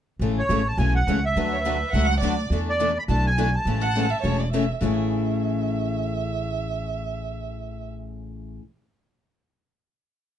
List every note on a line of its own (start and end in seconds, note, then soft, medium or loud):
0.19 0.43 A1 medium
0.19 0.40 C#3 medium
0.19 0.40 E3 medium
0.19 0.40 G#3 medium
0.19 0.41 A3 medium
0.19 0.41 C#4 medium
0.19 0.40 E4 medium
0.19 0.41 G#4 medium
0.19 0.41 A4 medium
0.39 0.68 C#5 medium
0.49 0.74 A1 medium
0.49 0.60 C#3 medium
0.49 0.60 E3 medium
0.49 0.61 G#3 medium
0.49 0.60 A3 medium
0.49 0.61 C#4 medium
0.49 0.61 E4 medium
0.49 0.61 G#4 medium
0.49 0.61 A4 medium
0.67 0.78 A5 medium
0.78 1.02 B1 medium
0.78 0.98 C#3 medium
0.78 0.98 E3 medium
0.78 0.97 G#3 medium
0.78 0.98 A3 medium
0.78 0.98 C#4 medium
0.78 0.97 E4 medium
0.78 0.98 G#4 medium
0.78 0.97 A4 medium
0.78 0.94 G#5 medium
0.95 1.25 F#5 medium
1.07 1.31 C#2 medium
1.07 1.18 C#3 medium
1.07 1.18 E3 medium
1.07 1.18 G#3 medium
1.07 1.18 A3 medium
1.07 1.19 C#4 medium
1.07 1.18 E4 medium
1.07 1.19 G#4 medium
1.07 1.19 A4 medium
1.25 2.07 E5 medium
1.36 1.82 D2 medium
1.36 1.55 D3 medium
1.36 1.55 F#3 medium
1.36 1.55 A3 medium
1.36 1.55 D4 medium
1.36 1.56 F#4 medium
1.36 1.56 B4 medium
1.52 1.63 C#5 medium
1.64 1.76 D3 medium
1.64 1.76 F#3 medium
1.64 1.76 A3 medium
1.64 1.76 D4 medium
1.64 1.76 F#4 medium
1.64 1.91 B4 medium
1.64 1.76 B4 medium
1.91 2.18 C#2 medium
1.91 2.13 D3 medium
1.91 2.13 F#3 medium
1.91 2.13 A3 medium
1.91 2.13 D4 medium
1.91 2.13 F#4 medium
1.91 2.13 B4 medium
1.91 2.19 F#5 loud
2.20 2.46 D2 medium
2.20 2.33 D3 medium
2.20 2.33 F#3 medium
2.20 2.33 A3 medium
2.20 2.34 D4 medium
2.20 2.33 F#4 medium
2.20 2.34 B4 medium
2.20 2.56 D5 medium
2.50 2.96 E2 medium
2.50 2.70 E3 medium
2.50 2.71 A3 medium
2.50 2.71 D4 medium
2.50 2.71 E4 medium
2.50 2.71 A4 medium
2.69 2.98 D5 medium
2.80 2.90 E3 medium
2.80 2.91 A3 medium
2.80 2.90 D4 medium
2.80 2.91 E4 medium
2.80 2.91 A4 medium
2.99 3.03 B5 medium
3.08 3.54 B1 medium
3.08 3.28 E3 medium
3.08 3.28 A3 medium
3.08 3.28 D4 medium
3.08 3.28 E4 medium
3.08 3.28 A4 medium
3.08 3.26 A5 medium
3.27 3.56 G#5 medium
3.38 3.48 E3 medium
3.38 3.48 A3 medium
3.38 3.48 D4 medium
3.38 3.48 E4 medium
3.38 3.48 A4 medium
3.55 4.37 A5 medium
3.65 4.12 A1 medium
3.65 3.86 C#3 medium
3.65 3.86 E3 medium
3.65 3.86 G#3 medium
3.65 3.86 A3 medium
3.65 3.86 C#4 medium
3.65 3.86 E4 medium
3.65 3.86 G#4 medium
3.65 3.86 A4 medium
3.81 4.12 F#5 medium
3.95 4.06 C#3 medium
3.95 4.06 E3 medium
3.95 4.06 G#3 medium
3.95 4.06 A3 medium
3.95 4.06 C#4 medium
3.95 4.06 E4 medium
3.95 4.06 G#4 medium
3.95 4.06 A4 medium
4.10 4.22 E5 medium
4.22 4.70 E1 medium
4.22 4.43 C#3 medium
4.22 4.43 E3 medium
4.22 4.43 G#3 medium
4.22 4.43 A3 medium
4.22 4.43 C#4 medium
4.22 4.43 E4 medium
4.22 4.43 G#4 medium
4.22 4.43 A4 medium
4.22 4.41 C#5 medium
4.39 4.52 D5 medium
4.52 4.64 C#3 medium
4.52 4.64 E3 medium
4.52 4.64 G#3 medium
4.52 4.64 A3 medium
4.52 4.64 C#4 medium
4.52 4.64 E4 medium
4.52 4.64 G#4 medium
4.52 4.64 A4 medium
4.52 4.79 E5 medium
4.81 8.57 A1 medium
4.81 8.61 A2 medium
4.81 8.61 C#3 medium
4.81 8.62 E3 medium
4.81 8.62 A3 medium
4.81 8.62 C#4 medium
4.81 8.63 E4 medium
4.81 8.62 G#4 medium
4.81 7.87 E5 medium